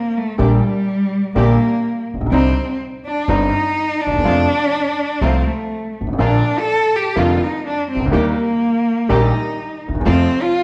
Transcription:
Already playing: cello A#3
0.17 cello A3
0.38 upright piano A#1 A#2 D3 G3 A#3 G4, upright bass A#1, cello G3, string section A#3 D4 G4
1.35 upright piano A#1 A#2 D3 G3 A#3 G4, upright bass A#1, string section A#3 D4 G4, cello A#3
2.14 upright bass A1, upright piano A1
2.21 upright piano A#1, upright bass A#1
2.26 upright bass B1, upright piano B1
2.31 upright bass C2, upright piano C2 C3 D3 G3 C4 D#4, cello C4, string section C4 D4 D#4
3.06 cello D4
3.28 upright bass G1, upright piano G1 G2 D3 G3 C4 D#4, string section C4 D4 D#4, cello D#4
4.01 cello D4
4.07 upright bass D2, upright piano D2
4.12 upright bass D#2, upright piano D#2
4.18 upright bass E2, upright piano E2
4.24 upright bass F2, upright piano F2 C3 F3 A3 F4, string section A3 C4 F4
5.21 upright bass C2, upright piano C2 C3 F3 A3 F4, string section A3 C4 F4, cello C4
5.47 cello A3
6.01 upright piano G1, upright bass G1
6.07 upright bass G#1, upright piano G#1
6.13 upright bass A1, upright piano A1
6.18 upright piano A#1 A#2 D3 F3 A#3 F4, upright bass A#1, string section A#3 D4 F4
6.23 cello D4
6.59 cello A4
6.96 cello G4
7.16 upright piano F1 F2 D3 F3 A#3 F4, upright bass F1, string section A#3 D4 F4
7.20 cello F4
7.44 cello D#4
7.67 cello D4
7.91 upright piano C2, cello C4
7.96 upright bass C2, upright piano C#2
8.02 upright bass C#2
8.06 upright piano D2, upright bass D2
8.11 upright piano D#2 D#3 G3 A#3 G4, upright bass D#2, string section A#3 D#4 G4, cello A#3
9.09 upright piano A#1 A#2 D#3 G3 A#3 G4, upright bass A#1, string section A#3 D#4 G4, cello D#4
9.88 upright piano D2, upright bass D2
9.95 upright piano D#2, upright bass D#2
10.00 upright piano E2, upright bass E2
10.06 upright piano F2 C3 F3 A3 F4, upright bass F2, string section A3 C4 F4, cello C4
10.42 cello F4

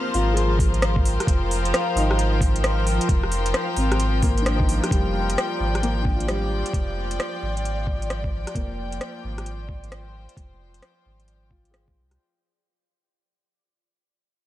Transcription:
Already playing: string section F3 F4 A#4 C5, upright piano G#3 A#3 C4 D4 D#4 G4, synth texture F5
0.14 sub bass G#1, upright piano F4, open hi-hat
0.34 upright piano G#4, closed hi-hat
0.59 kick, open hi-hat
0.74 closed hi-hat
0.82 cross-stick, closed hi-hat
0.96 kick
1.05 string section G5, open hi-hat
1.20 cross-stick, closed hi-hat
1.27 sub bass F1, kick, closed hi-hat
1.51 open hi-hat
1.65 closed hi-hat
1.74 cross-stick, closed hi-hat
1.95 sub bass G#1, upright piano D#4, open hi-hat
2.11 cross-stick
2.19 closed hi-hat
2.41 kick, open hi-hat
2.56 closed hi-hat
2.64 cross-stick, closed hi-hat
2.87 open hi-hat
3.01 closed hi-hat
3.09 sub bass F1, kick, closed hi-hat
3.23 cross-stick
3.32 open hi-hat
3.46 closed hi-hat
3.54 cross-stick, closed hi-hat
3.76 sub bass G#1, upright piano C4, open hi-hat
3.92 cross-stick, closed hi-hat
4.00 closed hi-hat
4.22 upright piano A#3, kick, open hi-hat
4.38 closed hi-hat
4.42 upright piano D4
4.46 cross-stick, closed hi-hat
4.56 upright piano D#4, kick
4.69 open hi-hat
4.84 cross-stick, closed hi-hat
4.91 sub bass F1, upright piano G3, synth texture D5, kick, closed hi-hat
5.30 closed hi-hat
5.38 cross-stick, closed hi-hat
5.50 string section D5
5.60 sub bass G#1
5.75 cross-stick, closed hi-hat
5.83 upright piano A#3, closed hi-hat
6.02 upright piano D4, kick
6.16 upright piano F4
6.20 closed hi-hat
6.27 upright piano G3, cross-stick, closed hi-hat
6.66 closed hi-hat
6.73 sub bass F1, kick, closed hi-hat
7.11 closed hi-hat
7.20 cross-stick, closed hi-hat
7.42 sub bass G#1
7.57 closed hi-hat
7.65 closed hi-hat
7.87 kick
8.02 closed hi-hat
8.10 cross-stick, closed hi-hat
8.24 kick
8.47 cross-stick, closed hi-hat
8.55 sub bass F1, upright piano A#3, kick, closed hi-hat
8.92 closed hi-hat
9.01 cross-stick, closed hi-hat
9.24 sub bass G#1
9.35 string section C5, cross-stick, closed hi-hat
9.46 closed hi-hat
9.69 kick
9.84 closed hi-hat
9.92 cross-stick, closed hi-hat
10.29 closed hi-hat
10.37 sub bass F1, kick, closed hi-hat
10.74 closed hi-hat
10.82 cross-stick, closed hi-hat
11.06 sub bass G#1
11.20 closed hi-hat
11.28 closed hi-hat
11.51 upright piano F4, kick
11.65 closed hi-hat
11.71 upright piano G#4, cross-stick, closed hi-hat
11.88 kick
11.96 sub bass C2
12.11 cross-stick, closed hi-hat

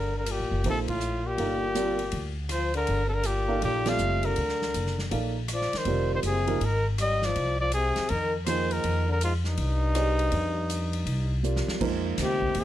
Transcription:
Already playing: upright bass G1, trombone D3, trumpet A#4
0.16 trombone D3, trumpet A#4
0.26 trombone A#2, hi-hat pedal, ride
0.31 trumpet G4
0.40 upright bass A1
0.51 upright bass F#1
0.64 upright bass A#1, trombone C3, upright piano F3 A#3 D#4 A4 C5, ride
0.70 trumpet A4
0.88 trombone A2, trumpet F4, kick, ride
1.01 hi-hat pedal
1.25 trombone A#2, trumpet G4
1.38 upright bass G1, upright piano A#3 D#4 A4 D5 F5, ride
1.75 upright piano G3 C4 F4 A#4 D5, hi-hat pedal, ride
1.99 ride
2.12 upright bass D2, ride
2.49 trombone F3, trumpet C5, cross-stick, hi-hat pedal, ride
2.74 trombone D3, trumpet A#4, ride
2.87 upright bass G1, ride
3.06 trombone C3, trumpet A4
3.12 trombone D3, trumpet A#4
3.23 trombone A#2, trumpet G4, hi-hat pedal, ride
3.48 upright piano A#3 D#4 A4 D5 F5
3.62 upright bass A#1, trombone A#2, trumpet G4, ride
3.86 upright piano G3 C4 F4 A4 D5, trombone A3, trumpet F5, snare, ride
3.98 upright bass F#1, hi-hat pedal
4.23 trombone D3, trumpet A#4, ride
4.36 upright bass D2, ride
4.49 snare
4.62 snare
4.74 upright bass F#1, hi-hat pedal, ride
4.87 snare
4.99 snare
5.11 upright bass A#1, upright piano A#3 D#4 A4 D5 F5, ride
5.48 trombone F3, cross-stick, hi-hat pedal, ride
5.54 trumpet D5
5.61 snare
5.73 trombone D#3, muted upright bass stroke, snare, ride
5.77 trumpet C5
5.85 upright bass F1, upright piano G3 C4 F4 A#4 D5, ride
6.14 trombone D#3, trumpet C5
6.23 upright bass F#1, trombone C3, trumpet G#4, hi-hat pedal, ride
6.47 upright piano F3 A#3 D#4 G#4 A#4, ride
6.61 upright bass G#1, trombone D#3, ride
6.65 trumpet A#4
6.98 trombone G3, trumpet D#5, cross-stick, hi-hat pedal, ride
7.22 trombone F3, trumpet D5, snare
7.36 upright bass C2, ride
7.60 trombone F3, trumpet D5
7.72 trombone C3, trumpet G#4, hi-hat pedal, ride
7.96 muted upright bass stroke, snare, ride
8.09 upright bass F2, trombone D#3, trumpet A#4, ride
8.46 trombone D#3, upright piano F3 A#3 D#4 G#4 C5, trumpet C5, cross-stick, hi-hat pedal, ride
8.71 trombone D#3, trumpet A#4, ride
8.84 upright bass F2, ride
9.08 trombone D3, trumpet A#4
9.21 trombone G#2, trumpet F4, hi-hat pedal, ride
9.44 trombone G2, trumpet D#4, snare
9.57 upright bass C2, ride
9.95 upright piano G4 G#4 C5 D5 D#5, cross-stick, hi-hat pedal, ride
10.19 ride
10.32 upright bass F2, ride
10.70 hi-hat pedal, ride
10.93 ride
11.06 upright bass C2, ride
11.43 upright piano G3 C4 F4 A#4 D5, hi-hat pedal
11.56 snare
11.68 muted upright bass stroke, snare
11.80 upright bass F2, upright piano F3 G#3 A#3 D#4 C5, kick, crash
12.18 upright bass D2, trombone C3, snare, hi-hat pedal, ride
12.24 trumpet G4
12.42 kick
12.55 upright bass D#2, trombone C3, ride
12.60 trumpet G#4

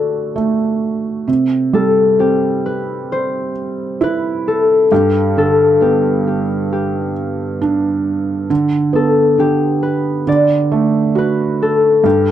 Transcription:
Already playing: felt piano D3 A3 F#4, harp A4 B4 D5 E5
0.36 felt piano A3
1.28 felt piano C3
1.73 felt piano G3, harp A4
2.19 felt piano C4, harp G4
2.66 harp B4
3.12 harp C5
4.01 felt piano E4, harp B4
4.48 harp A4
4.92 felt piano G2, harp G4
5.37 felt piano D3, harp A4
5.81 felt piano B3, harp G4
6.27 harp G4
6.73 harp G4
7.62 felt piano D4
8.50 felt piano D3
8.93 felt piano B3, harp A4
9.38 felt piano D3, harp G4
9.83 harp B4
10.27 felt piano D3, harp D5
10.72 felt piano A3
11.15 felt piano F#4, harp B4
11.62 harp A4
12.03 felt piano G2, harp G4

